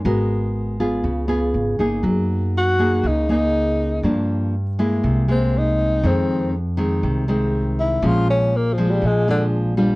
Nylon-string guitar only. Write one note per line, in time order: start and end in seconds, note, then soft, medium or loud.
0.05 1.02 G#3 medium
0.05 0.76 B3 medium
0.05 0.76 F#4 medium
0.05 0.76 A#4 medium
0.80 1.26 B3 medium
0.80 1.26 F4 medium
0.80 1.26 G#4 medium
1.04 2.02 C#3 medium
1.28 1.75 B3 medium
1.28 1.75 F4 medium
1.28 1.75 G#4 medium
1.79 2.75 A#3 medium
1.79 2.75 D#4 medium
1.79 2.76 G#4 medium
2.03 3.01 F#3 medium
2.79 3.25 A#3 medium
2.79 3.25 D#4 medium
2.79 3.26 G#4 medium
3.04 4.01 C#3 medium
3.29 4.00 A#3 medium
3.29 4.00 D#4 medium
3.29 4.01 G#4 medium
4.04 5.01 G2 medium
4.04 4.54 F3 medium
4.04 4.54 A#3 medium
4.04 4.54 D4 medium
4.79 5.25 G#3 medium
4.79 5.25 A#3 medium
4.79 5.25 E4 medium
5.04 6.01 C3 medium
5.28 5.99 G#3 medium
5.28 6.00 A#3 medium
6.04 7.01 F2 medium
6.04 6.53 D#3 medium
6.04 6.53 G#3 medium
6.04 6.54 C4 medium
6.77 7.24 D#3 medium
6.77 7.24 G#3 medium
6.77 7.24 C4 medium
7.03 8.00 C3 medium
7.28 7.99 D#3 medium
7.28 7.99 G#3 medium
7.28 7.99 C4 medium
8.03 9.00 A#2 medium
8.03 8.52 F3 medium
8.03 8.53 G#3 medium
8.03 8.53 C#4 medium
8.78 9.24 F3 medium
8.78 9.24 G#3 medium
8.78 9.24 D4 medium
9.03 9.95 A#2 medium
9.28 9.74 F3 medium
9.28 9.74 G#3 medium
9.28 9.74 D4 medium
9.77 9.95 G3 medium
9.77 9.95 D4 medium
9.77 9.95 F4 medium